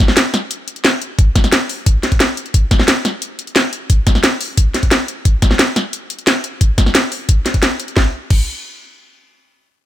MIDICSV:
0, 0, Header, 1, 2, 480
1, 0, Start_track
1, 0, Tempo, 338983
1, 1678, Time_signature, 4, 2, 24, 8
1, 13960, End_track
2, 0, Start_track
2, 0, Title_t, "Drums"
2, 118, Note_on_c, 9, 38, 38
2, 118, Note_on_c, 9, 40, 36
2, 237, Note_off_c, 9, 38, 0
2, 237, Note_on_c, 9, 38, 127
2, 237, Note_on_c, 9, 42, 91
2, 259, Note_off_c, 9, 40, 0
2, 379, Note_off_c, 9, 38, 0
2, 379, Note_off_c, 9, 42, 0
2, 478, Note_on_c, 9, 40, 52
2, 478, Note_on_c, 9, 42, 63
2, 619, Note_off_c, 9, 40, 0
2, 619, Note_off_c, 9, 42, 0
2, 718, Note_on_c, 9, 42, 91
2, 859, Note_off_c, 9, 42, 0
2, 957, Note_on_c, 9, 42, 66
2, 1078, Note_off_c, 9, 42, 0
2, 1078, Note_on_c, 9, 42, 37
2, 1198, Note_off_c, 9, 42, 0
2, 1198, Note_on_c, 9, 38, 113
2, 1198, Note_on_c, 9, 42, 81
2, 1340, Note_off_c, 9, 38, 0
2, 1340, Note_off_c, 9, 42, 0
2, 1439, Note_on_c, 9, 42, 62
2, 1580, Note_off_c, 9, 42, 0
2, 1679, Note_on_c, 9, 36, 126
2, 1679, Note_on_c, 9, 42, 89
2, 1820, Note_off_c, 9, 42, 0
2, 1821, Note_off_c, 9, 36, 0
2, 1919, Note_on_c, 9, 36, 108
2, 1919, Note_on_c, 9, 40, 48
2, 1919, Note_on_c, 9, 42, 65
2, 2039, Note_off_c, 9, 40, 0
2, 2039, Note_off_c, 9, 42, 0
2, 2039, Note_on_c, 9, 40, 37
2, 2039, Note_on_c, 9, 42, 37
2, 2061, Note_off_c, 9, 36, 0
2, 2159, Note_off_c, 9, 42, 0
2, 2159, Note_on_c, 9, 38, 122
2, 2159, Note_on_c, 9, 42, 93
2, 2180, Note_off_c, 9, 40, 0
2, 2301, Note_off_c, 9, 38, 0
2, 2301, Note_off_c, 9, 42, 0
2, 2400, Note_on_c, 9, 46, 85
2, 2541, Note_off_c, 9, 46, 0
2, 2639, Note_on_c, 9, 36, 114
2, 2639, Note_on_c, 9, 42, 89
2, 2781, Note_off_c, 9, 36, 0
2, 2781, Note_off_c, 9, 42, 0
2, 2879, Note_on_c, 9, 38, 39
2, 2879, Note_on_c, 9, 42, 64
2, 2999, Note_off_c, 9, 42, 0
2, 2999, Note_on_c, 9, 36, 63
2, 2999, Note_on_c, 9, 42, 36
2, 3021, Note_off_c, 9, 38, 0
2, 3119, Note_off_c, 9, 42, 0
2, 3119, Note_on_c, 9, 38, 118
2, 3119, Note_on_c, 9, 42, 88
2, 3141, Note_off_c, 9, 36, 0
2, 3260, Note_off_c, 9, 38, 0
2, 3260, Note_off_c, 9, 42, 0
2, 3359, Note_on_c, 9, 42, 62
2, 3479, Note_off_c, 9, 42, 0
2, 3479, Note_on_c, 9, 42, 34
2, 3599, Note_off_c, 9, 42, 0
2, 3599, Note_on_c, 9, 36, 116
2, 3599, Note_on_c, 9, 42, 89
2, 3740, Note_off_c, 9, 36, 0
2, 3741, Note_off_c, 9, 42, 0
2, 3838, Note_on_c, 9, 40, 45
2, 3838, Note_on_c, 9, 42, 63
2, 3839, Note_on_c, 9, 36, 105
2, 3958, Note_off_c, 9, 40, 0
2, 3958, Note_on_c, 9, 38, 38
2, 3958, Note_on_c, 9, 40, 33
2, 3980, Note_off_c, 9, 36, 0
2, 3980, Note_off_c, 9, 42, 0
2, 4078, Note_off_c, 9, 38, 0
2, 4078, Note_on_c, 9, 38, 122
2, 4078, Note_on_c, 9, 42, 86
2, 4100, Note_off_c, 9, 40, 0
2, 4220, Note_off_c, 9, 38, 0
2, 4220, Note_off_c, 9, 42, 0
2, 4318, Note_on_c, 9, 40, 47
2, 4318, Note_on_c, 9, 42, 62
2, 4460, Note_off_c, 9, 40, 0
2, 4460, Note_off_c, 9, 42, 0
2, 4557, Note_on_c, 9, 42, 90
2, 4699, Note_off_c, 9, 42, 0
2, 4798, Note_on_c, 9, 42, 64
2, 4918, Note_off_c, 9, 42, 0
2, 4918, Note_on_c, 9, 42, 37
2, 5037, Note_off_c, 9, 42, 0
2, 5037, Note_on_c, 9, 38, 107
2, 5037, Note_on_c, 9, 42, 84
2, 5179, Note_off_c, 9, 38, 0
2, 5179, Note_off_c, 9, 42, 0
2, 5278, Note_on_c, 9, 42, 63
2, 5420, Note_off_c, 9, 42, 0
2, 5518, Note_on_c, 9, 36, 117
2, 5518, Note_on_c, 9, 42, 96
2, 5659, Note_off_c, 9, 42, 0
2, 5660, Note_off_c, 9, 36, 0
2, 5758, Note_on_c, 9, 36, 105
2, 5758, Note_on_c, 9, 40, 46
2, 5758, Note_on_c, 9, 42, 67
2, 5878, Note_off_c, 9, 40, 0
2, 5878, Note_on_c, 9, 40, 35
2, 5899, Note_off_c, 9, 42, 0
2, 5900, Note_off_c, 9, 36, 0
2, 5998, Note_on_c, 9, 38, 114
2, 5998, Note_on_c, 9, 42, 92
2, 6020, Note_off_c, 9, 40, 0
2, 6140, Note_off_c, 9, 38, 0
2, 6140, Note_off_c, 9, 42, 0
2, 6238, Note_on_c, 9, 46, 88
2, 6380, Note_off_c, 9, 46, 0
2, 6478, Note_on_c, 9, 36, 107
2, 6478, Note_on_c, 9, 42, 95
2, 6619, Note_off_c, 9, 42, 0
2, 6620, Note_off_c, 9, 36, 0
2, 6718, Note_on_c, 9, 38, 36
2, 6718, Note_on_c, 9, 42, 66
2, 6838, Note_off_c, 9, 42, 0
2, 6838, Note_on_c, 9, 36, 60
2, 6838, Note_on_c, 9, 42, 37
2, 6860, Note_off_c, 9, 38, 0
2, 6958, Note_off_c, 9, 42, 0
2, 6958, Note_on_c, 9, 38, 110
2, 6958, Note_on_c, 9, 42, 86
2, 6980, Note_off_c, 9, 36, 0
2, 7100, Note_off_c, 9, 38, 0
2, 7100, Note_off_c, 9, 42, 0
2, 7198, Note_on_c, 9, 42, 65
2, 7340, Note_off_c, 9, 42, 0
2, 7438, Note_on_c, 9, 36, 116
2, 7438, Note_on_c, 9, 42, 100
2, 7579, Note_off_c, 9, 42, 0
2, 7580, Note_off_c, 9, 36, 0
2, 7678, Note_on_c, 9, 36, 103
2, 7678, Note_on_c, 9, 40, 46
2, 7678, Note_on_c, 9, 42, 71
2, 7798, Note_off_c, 9, 40, 0
2, 7798, Note_on_c, 9, 38, 34
2, 7798, Note_on_c, 9, 40, 33
2, 7819, Note_off_c, 9, 42, 0
2, 7820, Note_off_c, 9, 36, 0
2, 7919, Note_off_c, 9, 38, 0
2, 7919, Note_on_c, 9, 38, 117
2, 7919, Note_on_c, 9, 42, 97
2, 7940, Note_off_c, 9, 40, 0
2, 8060, Note_off_c, 9, 38, 0
2, 8060, Note_off_c, 9, 42, 0
2, 8159, Note_on_c, 9, 40, 48
2, 8159, Note_on_c, 9, 42, 69
2, 8300, Note_off_c, 9, 40, 0
2, 8300, Note_off_c, 9, 42, 0
2, 8398, Note_on_c, 9, 42, 91
2, 8540, Note_off_c, 9, 42, 0
2, 8638, Note_on_c, 9, 42, 72
2, 8759, Note_off_c, 9, 42, 0
2, 8759, Note_on_c, 9, 42, 39
2, 8879, Note_off_c, 9, 42, 0
2, 8879, Note_on_c, 9, 38, 108
2, 8879, Note_on_c, 9, 42, 86
2, 9020, Note_off_c, 9, 38, 0
2, 9020, Note_off_c, 9, 42, 0
2, 9119, Note_on_c, 9, 42, 68
2, 9260, Note_off_c, 9, 42, 0
2, 9359, Note_on_c, 9, 36, 115
2, 9359, Note_on_c, 9, 42, 100
2, 9500, Note_off_c, 9, 42, 0
2, 9501, Note_off_c, 9, 36, 0
2, 9599, Note_on_c, 9, 36, 102
2, 9599, Note_on_c, 9, 40, 48
2, 9599, Note_on_c, 9, 42, 71
2, 9719, Note_off_c, 9, 40, 0
2, 9719, Note_on_c, 9, 40, 37
2, 9741, Note_off_c, 9, 36, 0
2, 9741, Note_off_c, 9, 42, 0
2, 9839, Note_on_c, 9, 38, 117
2, 9839, Note_on_c, 9, 42, 99
2, 9861, Note_off_c, 9, 40, 0
2, 9981, Note_off_c, 9, 38, 0
2, 9981, Note_off_c, 9, 42, 0
2, 10079, Note_on_c, 9, 46, 80
2, 10221, Note_off_c, 9, 46, 0
2, 10319, Note_on_c, 9, 36, 109
2, 10319, Note_on_c, 9, 42, 96
2, 10460, Note_off_c, 9, 42, 0
2, 10461, Note_off_c, 9, 36, 0
2, 10559, Note_on_c, 9, 38, 37
2, 10559, Note_on_c, 9, 42, 73
2, 10679, Note_off_c, 9, 42, 0
2, 10679, Note_on_c, 9, 36, 65
2, 10679, Note_on_c, 9, 42, 41
2, 10700, Note_off_c, 9, 38, 0
2, 10799, Note_off_c, 9, 42, 0
2, 10799, Note_on_c, 9, 38, 113
2, 10799, Note_on_c, 9, 42, 94
2, 10821, Note_off_c, 9, 36, 0
2, 10940, Note_off_c, 9, 38, 0
2, 10940, Note_off_c, 9, 42, 0
2, 11039, Note_on_c, 9, 42, 69
2, 11159, Note_off_c, 9, 42, 0
2, 11159, Note_on_c, 9, 42, 39
2, 11279, Note_on_c, 9, 36, 116
2, 11279, Note_on_c, 9, 38, 83
2, 11301, Note_off_c, 9, 42, 0
2, 11421, Note_off_c, 9, 36, 0
2, 11421, Note_off_c, 9, 38, 0
2, 11759, Note_on_c, 9, 36, 117
2, 11759, Note_on_c, 9, 49, 89
2, 11900, Note_off_c, 9, 49, 0
2, 11901, Note_off_c, 9, 36, 0
2, 13960, End_track
0, 0, End_of_file